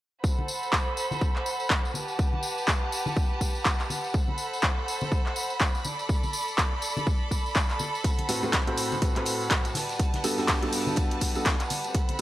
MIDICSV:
0, 0, Header, 1, 4, 480
1, 0, Start_track
1, 0, Tempo, 487805
1, 235, Time_signature, 4, 2, 24, 8
1, 12015, End_track
2, 0, Start_track
2, 0, Title_t, "Violin section"
2, 0, Program_c, 0, 48
2, 234, Note_on_c, 0, 83, 80
2, 235, Note_on_c, 0, 69, 77
2, 235, Note_on_c, 0, 72, 71
2, 235, Note_on_c, 0, 78, 69
2, 1898, Note_off_c, 0, 69, 0
2, 1898, Note_off_c, 0, 72, 0
2, 1898, Note_off_c, 0, 83, 0
2, 1914, Note_on_c, 0, 67, 75
2, 1914, Note_on_c, 0, 71, 69
2, 1914, Note_on_c, 0, 81, 84
2, 4053, Note_off_c, 0, 67, 0
2, 4053, Note_off_c, 0, 71, 0
2, 4053, Note_off_c, 0, 81, 0
2, 4074, Note_on_c, 0, 69, 79
2, 4075, Note_on_c, 0, 72, 71
2, 4075, Note_on_c, 0, 83, 83
2, 5715, Note_off_c, 0, 78, 0
2, 5738, Note_off_c, 0, 69, 0
2, 5738, Note_off_c, 0, 72, 0
2, 5755, Note_on_c, 0, 69, 77
2, 5755, Note_on_c, 0, 74, 68
2, 7893, Note_off_c, 0, 74, 0
2, 7915, Note_on_c, 0, 60, 68
2, 7915, Note_on_c, 0, 78, 69
2, 9555, Note_off_c, 0, 83, 0
2, 9557, Note_off_c, 0, 69, 0
2, 9578, Note_off_c, 0, 60, 0
2, 9595, Note_on_c, 0, 55, 80
2, 9595, Note_on_c, 0, 71, 71
2, 9595, Note_on_c, 0, 81, 86
2, 11733, Note_off_c, 0, 71, 0
2, 11733, Note_off_c, 0, 81, 0
2, 11734, Note_off_c, 0, 55, 0
2, 11755, Note_on_c, 0, 60, 72
2, 11755, Note_on_c, 0, 69, 74
2, 11755, Note_on_c, 0, 83, 89
2, 12015, Note_off_c, 0, 60, 0
2, 12015, Note_off_c, 0, 69, 0
2, 12015, Note_off_c, 0, 78, 0
2, 12015, Note_off_c, 0, 83, 0
2, 12015, End_track
3, 0, Start_track
3, 0, Title_t, "Grand piano"
3, 0, Program_c, 1, 0
3, 8154, Note_on_c, 1, 66, 73
3, 8155, Note_on_c, 1, 45, 76
3, 8155, Note_on_c, 1, 60, 72
3, 8155, Note_on_c, 1, 69, 70
3, 8155, Note_on_c, 1, 71, 86
3, 8274, Note_off_c, 1, 45, 0
3, 8274, Note_off_c, 1, 60, 0
3, 8274, Note_off_c, 1, 66, 0
3, 8274, Note_off_c, 1, 69, 0
3, 8274, Note_off_c, 1, 71, 0
3, 8294, Note_on_c, 1, 60, 76
3, 8295, Note_on_c, 1, 45, 84
3, 8295, Note_on_c, 1, 66, 77
3, 8295, Note_on_c, 1, 69, 76
3, 8295, Note_on_c, 1, 71, 90
3, 8442, Note_off_c, 1, 45, 0
3, 8442, Note_off_c, 1, 60, 0
3, 8442, Note_off_c, 1, 66, 0
3, 8442, Note_off_c, 1, 69, 0
3, 8442, Note_off_c, 1, 71, 0
3, 8535, Note_on_c, 1, 45, 86
3, 8535, Note_on_c, 1, 60, 82
3, 8535, Note_on_c, 1, 66, 81
3, 8535, Note_on_c, 1, 69, 82
3, 8535, Note_on_c, 1, 72, 96
3, 8789, Note_off_c, 1, 45, 0
3, 8789, Note_off_c, 1, 60, 0
3, 8789, Note_off_c, 1, 66, 0
3, 8789, Note_off_c, 1, 69, 0
3, 8789, Note_off_c, 1, 72, 0
3, 8874, Note_on_c, 1, 45, 81
3, 8874, Note_on_c, 1, 60, 76
3, 8874, Note_on_c, 1, 66, 74
3, 8874, Note_on_c, 1, 69, 72
3, 8874, Note_on_c, 1, 71, 85
3, 8981, Note_off_c, 1, 45, 0
3, 8981, Note_off_c, 1, 60, 0
3, 8981, Note_off_c, 1, 66, 0
3, 8981, Note_off_c, 1, 69, 0
3, 8981, Note_off_c, 1, 71, 0
3, 9015, Note_on_c, 1, 45, 76
3, 9015, Note_on_c, 1, 60, 71
3, 9015, Note_on_c, 1, 66, 67
3, 9015, Note_on_c, 1, 69, 69
3, 9015, Note_on_c, 1, 71, 83
3, 9583, Note_off_c, 1, 45, 0
3, 9583, Note_off_c, 1, 60, 0
3, 9583, Note_off_c, 1, 66, 0
3, 9583, Note_off_c, 1, 69, 0
3, 9583, Note_off_c, 1, 71, 0
3, 10074, Note_on_c, 1, 43, 88
3, 10074, Note_on_c, 1, 59, 81
3, 10074, Note_on_c, 1, 66, 78
3, 10074, Note_on_c, 1, 67, 78
3, 10074, Note_on_c, 1, 69, 99
3, 10181, Note_off_c, 1, 43, 0
3, 10181, Note_off_c, 1, 59, 0
3, 10181, Note_off_c, 1, 66, 0
3, 10181, Note_off_c, 1, 67, 0
3, 10181, Note_off_c, 1, 69, 0
3, 10215, Note_on_c, 1, 43, 76
3, 10215, Note_on_c, 1, 59, 74
3, 10215, Note_on_c, 1, 66, 74
3, 10215, Note_on_c, 1, 67, 68
3, 10215, Note_on_c, 1, 69, 85
3, 10421, Note_off_c, 1, 43, 0
3, 10421, Note_off_c, 1, 59, 0
3, 10421, Note_off_c, 1, 66, 0
3, 10421, Note_off_c, 1, 69, 0
3, 10422, Note_off_c, 1, 67, 0
3, 10454, Note_on_c, 1, 43, 97
3, 10454, Note_on_c, 1, 59, 89
3, 10454, Note_on_c, 1, 66, 89
3, 10454, Note_on_c, 1, 67, 87
3, 10454, Note_on_c, 1, 69, 104
3, 11141, Note_off_c, 1, 43, 0
3, 11141, Note_off_c, 1, 59, 0
3, 11141, Note_off_c, 1, 66, 0
3, 11141, Note_off_c, 1, 67, 0
3, 11141, Note_off_c, 1, 69, 0
3, 11175, Note_on_c, 1, 43, 73
3, 11175, Note_on_c, 1, 59, 68
3, 11175, Note_on_c, 1, 66, 71
3, 11175, Note_on_c, 1, 67, 67
3, 11175, Note_on_c, 1, 69, 83
3, 11322, Note_off_c, 1, 43, 0
3, 11322, Note_off_c, 1, 59, 0
3, 11322, Note_off_c, 1, 66, 0
3, 11322, Note_off_c, 1, 67, 0
3, 11322, Note_off_c, 1, 69, 0
3, 12015, End_track
4, 0, Start_track
4, 0, Title_t, "Drums"
4, 234, Note_on_c, 9, 36, 112
4, 236, Note_on_c, 9, 54, 50
4, 333, Note_off_c, 9, 36, 0
4, 335, Note_off_c, 9, 54, 0
4, 380, Note_on_c, 9, 63, 56
4, 475, Note_on_c, 9, 54, 90
4, 478, Note_off_c, 9, 63, 0
4, 574, Note_off_c, 9, 54, 0
4, 620, Note_on_c, 9, 54, 40
4, 714, Note_on_c, 9, 36, 112
4, 716, Note_on_c, 9, 39, 117
4, 718, Note_off_c, 9, 54, 0
4, 723, Note_on_c, 9, 54, 48
4, 813, Note_off_c, 9, 36, 0
4, 814, Note_off_c, 9, 39, 0
4, 822, Note_off_c, 9, 54, 0
4, 954, Note_on_c, 9, 54, 85
4, 1053, Note_off_c, 9, 54, 0
4, 1094, Note_on_c, 9, 63, 80
4, 1099, Note_on_c, 9, 54, 35
4, 1193, Note_off_c, 9, 54, 0
4, 1193, Note_off_c, 9, 63, 0
4, 1193, Note_on_c, 9, 54, 47
4, 1194, Note_on_c, 9, 36, 103
4, 1292, Note_off_c, 9, 54, 0
4, 1293, Note_off_c, 9, 36, 0
4, 1336, Note_on_c, 9, 39, 38
4, 1434, Note_off_c, 9, 39, 0
4, 1436, Note_on_c, 9, 54, 92
4, 1534, Note_off_c, 9, 54, 0
4, 1572, Note_on_c, 9, 54, 36
4, 1671, Note_off_c, 9, 54, 0
4, 1675, Note_on_c, 9, 36, 120
4, 1675, Note_on_c, 9, 39, 117
4, 1680, Note_on_c, 9, 54, 47
4, 1773, Note_off_c, 9, 36, 0
4, 1774, Note_off_c, 9, 39, 0
4, 1778, Note_off_c, 9, 54, 0
4, 1823, Note_on_c, 9, 54, 35
4, 1911, Note_on_c, 9, 63, 64
4, 1919, Note_off_c, 9, 54, 0
4, 1919, Note_on_c, 9, 54, 85
4, 2009, Note_off_c, 9, 63, 0
4, 2017, Note_off_c, 9, 54, 0
4, 2048, Note_on_c, 9, 54, 33
4, 2146, Note_off_c, 9, 54, 0
4, 2155, Note_on_c, 9, 36, 118
4, 2155, Note_on_c, 9, 54, 51
4, 2253, Note_off_c, 9, 36, 0
4, 2254, Note_off_c, 9, 54, 0
4, 2293, Note_on_c, 9, 63, 62
4, 2387, Note_on_c, 9, 54, 89
4, 2392, Note_off_c, 9, 63, 0
4, 2486, Note_off_c, 9, 54, 0
4, 2538, Note_on_c, 9, 54, 36
4, 2635, Note_on_c, 9, 36, 114
4, 2635, Note_on_c, 9, 39, 121
4, 2636, Note_off_c, 9, 54, 0
4, 2636, Note_on_c, 9, 54, 55
4, 2733, Note_off_c, 9, 36, 0
4, 2734, Note_off_c, 9, 39, 0
4, 2734, Note_off_c, 9, 54, 0
4, 2877, Note_on_c, 9, 54, 89
4, 2975, Note_off_c, 9, 54, 0
4, 3011, Note_on_c, 9, 63, 90
4, 3017, Note_on_c, 9, 54, 37
4, 3110, Note_off_c, 9, 63, 0
4, 3115, Note_off_c, 9, 54, 0
4, 3115, Note_on_c, 9, 36, 116
4, 3116, Note_on_c, 9, 54, 54
4, 3213, Note_off_c, 9, 36, 0
4, 3214, Note_off_c, 9, 54, 0
4, 3355, Note_on_c, 9, 36, 62
4, 3355, Note_on_c, 9, 54, 98
4, 3453, Note_off_c, 9, 36, 0
4, 3454, Note_off_c, 9, 54, 0
4, 3493, Note_on_c, 9, 54, 38
4, 3591, Note_off_c, 9, 54, 0
4, 3595, Note_on_c, 9, 36, 127
4, 3595, Note_on_c, 9, 54, 54
4, 3596, Note_on_c, 9, 39, 120
4, 3693, Note_off_c, 9, 36, 0
4, 3693, Note_off_c, 9, 54, 0
4, 3694, Note_off_c, 9, 39, 0
4, 3736, Note_on_c, 9, 39, 37
4, 3736, Note_on_c, 9, 54, 31
4, 3835, Note_off_c, 9, 39, 0
4, 3835, Note_off_c, 9, 54, 0
4, 3836, Note_on_c, 9, 63, 59
4, 3840, Note_on_c, 9, 54, 91
4, 3935, Note_off_c, 9, 63, 0
4, 3939, Note_off_c, 9, 54, 0
4, 3976, Note_on_c, 9, 54, 40
4, 4073, Note_off_c, 9, 54, 0
4, 4073, Note_on_c, 9, 54, 53
4, 4075, Note_on_c, 9, 36, 117
4, 4172, Note_off_c, 9, 54, 0
4, 4173, Note_off_c, 9, 36, 0
4, 4211, Note_on_c, 9, 63, 64
4, 4307, Note_on_c, 9, 54, 90
4, 4309, Note_off_c, 9, 63, 0
4, 4405, Note_off_c, 9, 54, 0
4, 4461, Note_on_c, 9, 54, 41
4, 4550, Note_off_c, 9, 54, 0
4, 4550, Note_on_c, 9, 54, 51
4, 4555, Note_on_c, 9, 36, 119
4, 4556, Note_on_c, 9, 39, 120
4, 4648, Note_off_c, 9, 54, 0
4, 4653, Note_off_c, 9, 36, 0
4, 4654, Note_off_c, 9, 39, 0
4, 4803, Note_on_c, 9, 54, 90
4, 4901, Note_off_c, 9, 54, 0
4, 4928, Note_on_c, 9, 54, 40
4, 4936, Note_on_c, 9, 63, 86
4, 5026, Note_off_c, 9, 54, 0
4, 5035, Note_off_c, 9, 63, 0
4, 5035, Note_on_c, 9, 36, 114
4, 5038, Note_on_c, 9, 54, 48
4, 5133, Note_off_c, 9, 36, 0
4, 5136, Note_off_c, 9, 54, 0
4, 5176, Note_on_c, 9, 39, 36
4, 5274, Note_off_c, 9, 39, 0
4, 5274, Note_on_c, 9, 54, 91
4, 5372, Note_off_c, 9, 54, 0
4, 5413, Note_on_c, 9, 54, 41
4, 5511, Note_off_c, 9, 54, 0
4, 5514, Note_on_c, 9, 54, 48
4, 5515, Note_on_c, 9, 36, 124
4, 5516, Note_on_c, 9, 39, 117
4, 5612, Note_off_c, 9, 54, 0
4, 5613, Note_off_c, 9, 36, 0
4, 5614, Note_off_c, 9, 39, 0
4, 5656, Note_on_c, 9, 54, 38
4, 5751, Note_off_c, 9, 54, 0
4, 5751, Note_on_c, 9, 54, 99
4, 5756, Note_on_c, 9, 63, 62
4, 5850, Note_off_c, 9, 54, 0
4, 5854, Note_off_c, 9, 63, 0
4, 5895, Note_on_c, 9, 54, 39
4, 5994, Note_off_c, 9, 54, 0
4, 5995, Note_on_c, 9, 36, 115
4, 5997, Note_on_c, 9, 54, 56
4, 6093, Note_off_c, 9, 36, 0
4, 6095, Note_off_c, 9, 54, 0
4, 6134, Note_on_c, 9, 54, 40
4, 6135, Note_on_c, 9, 63, 57
4, 6232, Note_off_c, 9, 54, 0
4, 6232, Note_on_c, 9, 54, 98
4, 6233, Note_off_c, 9, 63, 0
4, 6330, Note_off_c, 9, 54, 0
4, 6376, Note_on_c, 9, 54, 41
4, 6475, Note_off_c, 9, 54, 0
4, 6475, Note_on_c, 9, 36, 118
4, 6476, Note_on_c, 9, 39, 112
4, 6481, Note_on_c, 9, 54, 55
4, 6573, Note_off_c, 9, 36, 0
4, 6574, Note_off_c, 9, 39, 0
4, 6579, Note_off_c, 9, 54, 0
4, 6711, Note_on_c, 9, 54, 84
4, 6809, Note_off_c, 9, 54, 0
4, 6856, Note_on_c, 9, 63, 80
4, 6858, Note_on_c, 9, 54, 43
4, 6954, Note_off_c, 9, 54, 0
4, 6954, Note_off_c, 9, 63, 0
4, 6954, Note_on_c, 9, 54, 49
4, 6955, Note_on_c, 9, 36, 116
4, 7052, Note_off_c, 9, 54, 0
4, 7053, Note_off_c, 9, 36, 0
4, 7195, Note_on_c, 9, 36, 60
4, 7198, Note_on_c, 9, 54, 83
4, 7293, Note_off_c, 9, 36, 0
4, 7296, Note_off_c, 9, 54, 0
4, 7341, Note_on_c, 9, 54, 38
4, 7431, Note_off_c, 9, 54, 0
4, 7431, Note_on_c, 9, 54, 57
4, 7435, Note_on_c, 9, 36, 127
4, 7436, Note_on_c, 9, 39, 113
4, 7529, Note_off_c, 9, 54, 0
4, 7533, Note_off_c, 9, 36, 0
4, 7535, Note_off_c, 9, 39, 0
4, 7572, Note_on_c, 9, 54, 35
4, 7577, Note_on_c, 9, 39, 33
4, 7669, Note_off_c, 9, 54, 0
4, 7669, Note_on_c, 9, 54, 89
4, 7675, Note_off_c, 9, 39, 0
4, 7675, Note_on_c, 9, 63, 63
4, 7767, Note_off_c, 9, 54, 0
4, 7773, Note_off_c, 9, 63, 0
4, 7823, Note_on_c, 9, 54, 39
4, 7915, Note_off_c, 9, 54, 0
4, 7915, Note_on_c, 9, 36, 109
4, 7915, Note_on_c, 9, 42, 76
4, 7915, Note_on_c, 9, 54, 49
4, 7916, Note_off_c, 9, 42, 0
4, 7916, Note_on_c, 9, 42, 83
4, 8013, Note_off_c, 9, 36, 0
4, 8013, Note_off_c, 9, 54, 0
4, 8015, Note_off_c, 9, 42, 0
4, 8053, Note_on_c, 9, 63, 58
4, 8055, Note_on_c, 9, 42, 51
4, 8057, Note_off_c, 9, 42, 0
4, 8057, Note_on_c, 9, 42, 40
4, 8151, Note_off_c, 9, 63, 0
4, 8154, Note_off_c, 9, 42, 0
4, 8154, Note_on_c, 9, 42, 69
4, 8155, Note_on_c, 9, 46, 104
4, 8158, Note_on_c, 9, 54, 91
4, 8253, Note_off_c, 9, 42, 0
4, 8253, Note_off_c, 9, 46, 0
4, 8256, Note_off_c, 9, 54, 0
4, 8294, Note_on_c, 9, 54, 40
4, 8391, Note_on_c, 9, 42, 85
4, 8392, Note_off_c, 9, 54, 0
4, 8394, Note_on_c, 9, 54, 48
4, 8395, Note_off_c, 9, 42, 0
4, 8395, Note_on_c, 9, 36, 118
4, 8395, Note_on_c, 9, 38, 118
4, 8395, Note_on_c, 9, 42, 74
4, 8396, Note_on_c, 9, 39, 109
4, 8492, Note_off_c, 9, 54, 0
4, 8493, Note_off_c, 9, 36, 0
4, 8493, Note_off_c, 9, 38, 0
4, 8493, Note_off_c, 9, 42, 0
4, 8494, Note_off_c, 9, 39, 0
4, 8532, Note_on_c, 9, 42, 38
4, 8536, Note_off_c, 9, 42, 0
4, 8536, Note_on_c, 9, 42, 47
4, 8633, Note_on_c, 9, 54, 94
4, 8634, Note_off_c, 9, 42, 0
4, 8635, Note_on_c, 9, 42, 72
4, 8635, Note_on_c, 9, 46, 107
4, 8731, Note_off_c, 9, 54, 0
4, 8733, Note_off_c, 9, 46, 0
4, 8734, Note_off_c, 9, 42, 0
4, 8775, Note_on_c, 9, 54, 40
4, 8782, Note_on_c, 9, 63, 75
4, 8874, Note_off_c, 9, 54, 0
4, 8875, Note_on_c, 9, 36, 108
4, 8875, Note_on_c, 9, 42, 90
4, 8875, Note_on_c, 9, 54, 54
4, 8880, Note_off_c, 9, 63, 0
4, 8973, Note_off_c, 9, 36, 0
4, 8973, Note_off_c, 9, 42, 0
4, 8974, Note_off_c, 9, 54, 0
4, 9015, Note_on_c, 9, 42, 50
4, 9016, Note_on_c, 9, 39, 34
4, 9108, Note_off_c, 9, 42, 0
4, 9108, Note_on_c, 9, 42, 64
4, 9114, Note_on_c, 9, 54, 97
4, 9115, Note_off_c, 9, 39, 0
4, 9115, Note_on_c, 9, 46, 103
4, 9206, Note_off_c, 9, 42, 0
4, 9213, Note_off_c, 9, 46, 0
4, 9213, Note_off_c, 9, 54, 0
4, 9256, Note_on_c, 9, 54, 37
4, 9349, Note_on_c, 9, 38, 122
4, 9354, Note_off_c, 9, 54, 0
4, 9355, Note_on_c, 9, 36, 120
4, 9355, Note_on_c, 9, 42, 75
4, 9356, Note_on_c, 9, 39, 108
4, 9356, Note_on_c, 9, 54, 54
4, 9358, Note_off_c, 9, 42, 0
4, 9358, Note_on_c, 9, 42, 80
4, 9448, Note_off_c, 9, 38, 0
4, 9453, Note_off_c, 9, 36, 0
4, 9454, Note_off_c, 9, 54, 0
4, 9455, Note_off_c, 9, 39, 0
4, 9456, Note_off_c, 9, 42, 0
4, 9495, Note_on_c, 9, 42, 50
4, 9495, Note_on_c, 9, 54, 36
4, 9591, Note_on_c, 9, 63, 65
4, 9593, Note_off_c, 9, 54, 0
4, 9594, Note_off_c, 9, 42, 0
4, 9595, Note_on_c, 9, 46, 103
4, 9596, Note_on_c, 9, 42, 65
4, 9598, Note_on_c, 9, 54, 87
4, 9600, Note_on_c, 9, 38, 52
4, 9689, Note_off_c, 9, 63, 0
4, 9694, Note_off_c, 9, 42, 0
4, 9694, Note_off_c, 9, 46, 0
4, 9696, Note_off_c, 9, 54, 0
4, 9698, Note_off_c, 9, 38, 0
4, 9732, Note_on_c, 9, 38, 51
4, 9735, Note_on_c, 9, 42, 33
4, 9742, Note_on_c, 9, 54, 36
4, 9831, Note_off_c, 9, 38, 0
4, 9834, Note_off_c, 9, 42, 0
4, 9834, Note_on_c, 9, 42, 84
4, 9835, Note_off_c, 9, 42, 0
4, 9835, Note_on_c, 9, 36, 110
4, 9835, Note_on_c, 9, 42, 75
4, 9837, Note_off_c, 9, 54, 0
4, 9837, Note_on_c, 9, 54, 45
4, 9933, Note_off_c, 9, 36, 0
4, 9933, Note_off_c, 9, 42, 0
4, 9936, Note_off_c, 9, 54, 0
4, 9974, Note_on_c, 9, 63, 57
4, 9975, Note_on_c, 9, 38, 50
4, 9975, Note_on_c, 9, 42, 51
4, 10072, Note_off_c, 9, 63, 0
4, 10073, Note_off_c, 9, 38, 0
4, 10074, Note_off_c, 9, 42, 0
4, 10075, Note_on_c, 9, 46, 94
4, 10076, Note_on_c, 9, 42, 71
4, 10079, Note_on_c, 9, 54, 89
4, 10173, Note_off_c, 9, 46, 0
4, 10175, Note_off_c, 9, 42, 0
4, 10177, Note_off_c, 9, 54, 0
4, 10213, Note_on_c, 9, 38, 45
4, 10214, Note_on_c, 9, 54, 38
4, 10310, Note_off_c, 9, 54, 0
4, 10310, Note_on_c, 9, 54, 48
4, 10311, Note_off_c, 9, 38, 0
4, 10315, Note_on_c, 9, 36, 115
4, 10315, Note_on_c, 9, 42, 78
4, 10316, Note_on_c, 9, 39, 113
4, 10318, Note_on_c, 9, 46, 84
4, 10320, Note_on_c, 9, 38, 119
4, 10409, Note_off_c, 9, 54, 0
4, 10413, Note_off_c, 9, 36, 0
4, 10413, Note_off_c, 9, 42, 0
4, 10415, Note_off_c, 9, 39, 0
4, 10417, Note_off_c, 9, 46, 0
4, 10418, Note_off_c, 9, 38, 0
4, 10455, Note_on_c, 9, 42, 47
4, 10553, Note_off_c, 9, 42, 0
4, 10553, Note_on_c, 9, 42, 70
4, 10554, Note_on_c, 9, 54, 91
4, 10555, Note_on_c, 9, 46, 100
4, 10651, Note_off_c, 9, 42, 0
4, 10652, Note_off_c, 9, 54, 0
4, 10653, Note_off_c, 9, 46, 0
4, 10694, Note_on_c, 9, 54, 38
4, 10694, Note_on_c, 9, 63, 82
4, 10786, Note_on_c, 9, 42, 88
4, 10793, Note_off_c, 9, 54, 0
4, 10793, Note_off_c, 9, 63, 0
4, 10795, Note_off_c, 9, 42, 0
4, 10795, Note_on_c, 9, 36, 108
4, 10795, Note_on_c, 9, 42, 78
4, 10796, Note_on_c, 9, 54, 53
4, 10893, Note_off_c, 9, 36, 0
4, 10893, Note_off_c, 9, 42, 0
4, 10894, Note_off_c, 9, 54, 0
4, 10935, Note_on_c, 9, 42, 50
4, 10936, Note_off_c, 9, 42, 0
4, 10936, Note_on_c, 9, 42, 44
4, 11031, Note_off_c, 9, 42, 0
4, 11031, Note_on_c, 9, 42, 65
4, 11032, Note_on_c, 9, 54, 83
4, 11035, Note_on_c, 9, 36, 54
4, 11035, Note_on_c, 9, 46, 99
4, 11130, Note_off_c, 9, 42, 0
4, 11131, Note_off_c, 9, 54, 0
4, 11133, Note_off_c, 9, 36, 0
4, 11133, Note_off_c, 9, 46, 0
4, 11171, Note_on_c, 9, 54, 39
4, 11269, Note_off_c, 9, 54, 0
4, 11271, Note_on_c, 9, 54, 45
4, 11275, Note_on_c, 9, 36, 118
4, 11275, Note_on_c, 9, 42, 76
4, 11276, Note_off_c, 9, 42, 0
4, 11276, Note_on_c, 9, 39, 109
4, 11276, Note_on_c, 9, 42, 92
4, 11285, Note_on_c, 9, 38, 114
4, 11369, Note_off_c, 9, 54, 0
4, 11373, Note_off_c, 9, 36, 0
4, 11374, Note_off_c, 9, 39, 0
4, 11374, Note_off_c, 9, 42, 0
4, 11384, Note_off_c, 9, 38, 0
4, 11415, Note_on_c, 9, 42, 51
4, 11416, Note_on_c, 9, 39, 33
4, 11416, Note_on_c, 9, 54, 32
4, 11513, Note_off_c, 9, 42, 0
4, 11514, Note_off_c, 9, 54, 0
4, 11515, Note_off_c, 9, 39, 0
4, 11515, Note_on_c, 9, 46, 98
4, 11517, Note_on_c, 9, 42, 74
4, 11517, Note_on_c, 9, 54, 87
4, 11519, Note_on_c, 9, 63, 61
4, 11613, Note_off_c, 9, 46, 0
4, 11616, Note_off_c, 9, 42, 0
4, 11616, Note_off_c, 9, 54, 0
4, 11618, Note_off_c, 9, 63, 0
4, 11655, Note_on_c, 9, 42, 36
4, 11657, Note_on_c, 9, 54, 35
4, 11752, Note_off_c, 9, 54, 0
4, 11752, Note_on_c, 9, 54, 48
4, 11753, Note_off_c, 9, 42, 0
4, 11754, Note_on_c, 9, 42, 81
4, 11755, Note_off_c, 9, 42, 0
4, 11755, Note_on_c, 9, 36, 109
4, 11755, Note_on_c, 9, 42, 90
4, 11851, Note_off_c, 9, 54, 0
4, 11853, Note_off_c, 9, 36, 0
4, 11854, Note_off_c, 9, 42, 0
4, 11895, Note_on_c, 9, 42, 56
4, 11897, Note_off_c, 9, 42, 0
4, 11897, Note_on_c, 9, 42, 42
4, 11900, Note_on_c, 9, 63, 55
4, 11995, Note_off_c, 9, 42, 0
4, 11998, Note_off_c, 9, 63, 0
4, 12015, End_track
0, 0, End_of_file